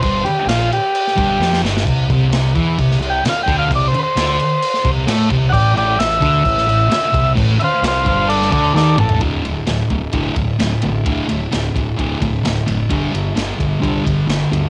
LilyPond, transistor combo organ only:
\new Staff \with { instrumentName = "Transistor combo organ" } { \time 4/4 \key a \dorian \tempo 4 = 131 c''8 g'8 f'8 g'2 r8 | r2 \tuplet 3/2 { r4 g''8 f''8 g''8 f''8 } | \tuplet 3/2 { d''8 c''8 <b' c''>8~ } <b' c''>4. r4. | <d'' fis'' g''>8 <d'' g''>8 e''2. |
r8 <c'' e'' f''>8 <c'' f''>8 <c'' f''>8 <a' d''>8 <a' d''>8 <a' d''>8 a'8 | r1 | r1 | r1 | }